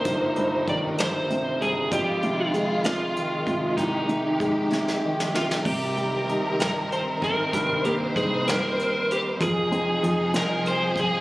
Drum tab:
CC |------------|------------|------------|x-----------|
HH |x-x-x-x-x-x-|x-x-x-x-x-x-|x-x-x-------|--x-x-x-x-x-|
SD |------o-----|------o-----|------oo-ooo|------o-----|
BD |o---o-------|o---------o-|o---o-------|o---------o-|

CC |------------|------------|
HH |x-x-x-x-x-x-|x-x-x-x-x-x-|
SD |------o-----|------o-----|
BD |o---o-------|o---------o-|